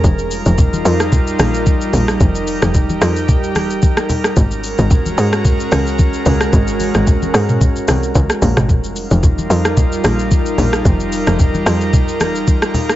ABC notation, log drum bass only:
X:1
M:4/4
L:1/16
Q:"Swing 16ths" 1/4=111
K:Fm
V:1 name="Log drum bass" clef=bass
F,,,3 F,,,3 F,,4 B,,,4 B,,,2 | F,,,3 F,,,3 F,,4 F,,,2 z4 | A,,,3 A,,,3 A,,4 D,,4 D,,2 | A,,,3 A,,,3 A,,4 C,,2 D,, z B,,, A,,, |
F,,,3 F,,,3 F,,4 B,,,4 B,,,2 | F,,,3 F,,,3 F,,4 F,,,2 z4 |]